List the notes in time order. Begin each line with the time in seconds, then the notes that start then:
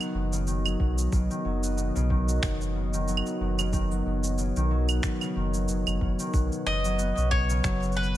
Already playing: D#3 F#3 B3 F#4 C#5 D#5
0.01 B3, claves, shaker
0.14 F#1 B2
0.33 C#3, shaker
0.47 D#3, shaker
0.65 F#3, claves, shaker
0.80 B1 B2, kick
0.98 shaker
1.12 B1 C#3, kick, shaker
1.30 D#3, shaker
1.45 F#1 F#3
1.63 B3, shaker
1.77 B2, shaker
1.95 B1 C#3, shaker
2.10 D#3, kick
2.29 F#3, shaker
2.43 F#1 B2, finger snap, kick, shaker
2.61 shaker
2.75 C#3
2.94 D#3, shaker
3.08 F#3, shaker
3.17 claves
3.26 B3, shaker
3.40 F#1 B2
3.59 C#3, claves, shaker
3.73 D#3, kick, shaker
3.91 F#3, shaker
4.06 F#1 B2
4.24 shaker
4.38 C#3, shaker
4.56 B1 D#3, shaker
4.71 F#3
4.89 B3, claves, shaker
5.03 B2, finger snap, kick, shaker
5.21 C#3, claves, shaker
5.36 F#1 D#3
5.54 F#3, shaker
5.68 F#1 B2, shaker
5.87 F#1, claves, shaker
6.01 F#1 C#3, kick
6.19 D#3, shaker
6.34 B1 B2 B4 F#5, kick, shaker
6.52 shaker
6.66 F#1 C#3 D#5
6.85 F#3, shaker
6.99 B3, shaker
7.17 B1 C#4, shaker
7.31 B2 C#5, kick
7.50 C#3, shaker
7.63 F#1 F#3, finger snap, kick, shaker
7.82 C#3, shaker
7.92 shaker
7.97 B2 B4
8.03 shaker